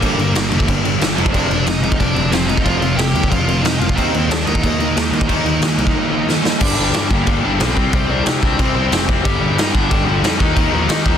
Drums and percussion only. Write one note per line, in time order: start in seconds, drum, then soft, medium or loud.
0.02 kick loud
0.02 crash medium
0.19 crash medium
0.35 snare loud
0.35 crash medium
0.52 crash medium
0.60 kick medium
0.68 kick loud
0.68 crash medium
0.85 crash medium
1.01 snare medium
1.01 crash medium
1.18 crash medium
1.26 kick loud
1.34 kick loud
1.34 crash medium
1.51 crash medium
1.67 snare loud
1.67 crash medium
1.83 crash medium
1.92 kick medium
2.00 kick medium
2.00 crash medium
2.16 crash medium
2.32 snare loud
2.32 crash medium
2.49 crash medium
2.57 kick medium
2.66 kick medium
2.66 crash medium
2.82 crash medium
2.99 snare loud
2.99 crash medium
3.15 crash medium
3.23 kick medium
3.32 kick medium
3.32 crash medium
3.48 crash medium
3.65 snare loud
3.65 crash medium
3.81 crash medium
3.89 kick loud
3.98 kick medium
3.98 crash medium
4.14 crash medium
4.31 snare loud
4.31 crash medium
4.47 crash medium
4.55 kick medium
4.63 kick medium
4.63 crash medium
4.80 crash medium
4.97 snare loud
4.97 crash medium
5.13 crash medium
5.21 kick loud
5.29 kick medium
5.29 crash medium
5.46 crash medium
5.62 snare loud
5.62 crash medium
5.78 crash medium
5.87 kick medium
6.29 snare medium
6.45 snare loud
6.61 kick loud
6.61 crash loud
6.61 crash medium
6.94 snare loud
6.94 crash medium
7.11 kick loud
7.27 kick loud
7.27 crash medium
7.60 snare loud
7.60 crash medium
7.77 kick medium
7.93 kick loud
7.93 crash medium
8.26 snare loud
8.26 crash medium
8.43 kick loud
8.59 kick loud
8.59 crash medium
8.92 snare loud
8.92 crash medium
9.09 kick medium
9.25 kick loud
9.25 crash medium
9.58 snare loud
9.58 crash medium
9.75 kick loud
9.91 kick loud
9.91 crash medium
10.24 snare loud
10.24 crash medium
10.40 kick loud
10.56 kick loud
10.56 crash medium
10.89 snare loud
10.89 crash medium
11.06 kick loud